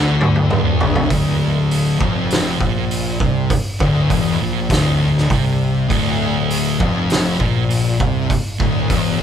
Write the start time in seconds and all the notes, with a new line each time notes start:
Already playing: D2 D3
0.21 high tom
0.36 high tom
0.50 D1 D2, mid tom
0.81 floor tom
0.95 floor tom
1.10 D1 D2, kick, open hi-hat
1.71 open hi-hat
1.99 F1 F2, kick
2.30 snare, open hi-hat
2.59 A#1 A#2, kick
2.91 open hi-hat
3.19 C2 C3, kick
3.50 kick, open hi-hat
3.80 D1 D2, kick
4.10 E1 E2, kick, open hi-hat
4.40 A#1 A#2
4.69 D1 D2, kick, snare, open hi-hat
5.17 snare
5.29 C2 C3, kick, open hi-hat
5.89 D1 D2, kick, open hi-hat
6.50 open hi-hat
6.80 F1 F2, kick
7.10 snare, open hi-hat
7.40 A#1 A#2, kick
7.70 open hi-hat
7.99 C2 C3, kick
8.30 kick, open hi-hat
8.60 D1 D2, kick
8.90 E1 E2, kick, open hi-hat
9.20 A#1 A#2